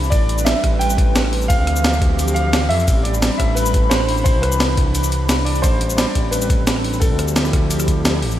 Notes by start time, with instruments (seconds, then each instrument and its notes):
Already playing: analog synth bass C2, analog synth pad E3 D4
0.04 shaker
0.10 analog synth bass A1, analog synth pad G3 C4 B4, grand piano D5, kick, closed hi-hat, ride, shaker
0.29 closed hi-hat
0.38 shaker
0.45 grand piano E5, snare, closed hi-hat, ride, shaker
0.64 analog synth bass A1, kick, cross-stick, closed hi-hat
0.79 grand piano G5, closed hi-hat, ride, shaker
0.90 shaker
0.98 kick, closed hi-hat, shaker
1.16 snare, closed hi-hat, ride, shaker
1.25 cross-stick
1.33 open hi-hat
1.42 shaker
1.48 analog synth pad E3 F3 G4, grand piano F5, kick, closed hi-hat, ride, shaker
1.59 analog synth bass D2
1.67 cross-stick, closed hi-hat
1.76 shaker
1.84 snare, closed hi-hat, ride, shaker
1.93 shaker
2.02 analog synth bass D2, kick, closed hi-hat
2.19 closed hi-hat, ride, shaker
2.28 shaker
2.34 grand piano F5, closed hi-hat, shaker
2.53 snare, closed hi-hat, ride, shaker
2.69 analog synth bass F2, grand piano E5, open hi-hat
2.80 shaker
2.88 analog synth bass A1, analog synth pad G3 D4 B5, kick, closed hi-hat, ride, shaker
3.03 grand piano D5, closed hi-hat
3.14 shaker
3.22 snare, closed hi-hat, ride, shaker
3.38 analog synth bass A1, grand piano E5, kick, cross-stick, closed hi-hat
3.55 grand piano B4, closed hi-hat, ride, shaker
3.66 shaker
3.74 kick, closed hi-hat, shaker
3.90 grand piano C5, snare, closed hi-hat, ride, shaker
4.00 cross-stick
4.09 open hi-hat
4.18 shaker
4.24 analog synth pad E3, grand piano C5, kick, closed hi-hat, ride, shaker
4.35 analog synth bass C2
4.42 grand piano B4, cross-stick, closed hi-hat
4.52 shaker
4.60 snare, closed hi-hat, ride, shaker
4.77 analog synth bass C2, kick, closed hi-hat
4.95 closed hi-hat, ride, shaker
5.04 shaker
5.12 closed hi-hat, shaker
5.29 snare, closed hi-hat, ride, shaker
5.45 grand piano D5, open hi-hat
5.55 shaker
5.62 analog synth bass A1, analog synth pad G3 C4, grand piano C5, kick, closed hi-hat, ride, shaker
5.81 closed hi-hat
5.90 shaker
5.97 grand piano D5, snare, closed hi-hat, ride, shaker
6.15 analog synth bass A1, kick, closed hi-hat
6.31 grand piano B4, closed hi-hat, ride, shaker
6.42 shaker
6.50 kick, closed hi-hat, shaker
6.67 snare, closed hi-hat, ride, shaker
6.76 cross-stick
6.84 open hi-hat
6.93 shaker
7.00 analog synth pad F3 E4 G4, grand piano A4, kick, closed hi-hat, ride, shaker
7.11 analog synth bass D2
7.19 cross-stick, closed hi-hat, shaker
7.28 shaker
7.36 snare, closed hi-hat, ride, shaker
7.45 snare, shaker
7.53 analog synth bass D2, kick, cross-stick, closed hi-hat
7.71 closed hi-hat, ride, shaker
7.80 cross-stick, shaker
7.88 kick, closed hi-hat, shaker
8.05 analog synth bass D2, snare, closed hi-hat, ride, shaker
8.22 analog synth bass A1, open hi-hat
8.31 shaker